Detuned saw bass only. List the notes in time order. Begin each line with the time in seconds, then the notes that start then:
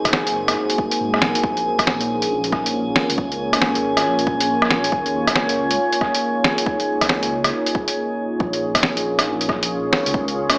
0.05 F#1
1.01 G#2
1.22 A#1
1.44 A#1
2.30 A#1
3.09 C#2
3.53 G#1
4.05 A#1
4.27 A#1
4.92 D#2
5.28 C#2
7.02 C#2
8.40 A#1
9.27 A#1
10.06 C#2
10.49 G#1